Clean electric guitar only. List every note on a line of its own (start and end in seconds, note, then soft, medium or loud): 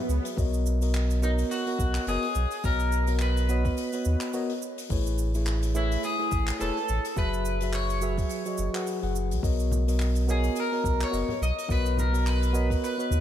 1.24 1.31 D#4 medium
1.51 2.04 F#4 medium
2.08 2.65 G#4 loud
2.65 3.17 A#4 loud
3.22 4.31 B4 loud
5.77 6.04 E4 medium
6.05 6.61 G#4 medium
6.61 7.18 A4 medium
7.18 7.70 B4 loud
7.74 8.83 C#5 loud
10.31 10.59 G#4 medium
10.60 11.03 A#4 medium
11.04 11.40 C#5 loud
11.43 11.71 D#5 loud
11.72 11.99 B4 loud
12.00 12.28 A#4 medium
12.28 12.83 B4 loud
12.84 13.21 B4 medium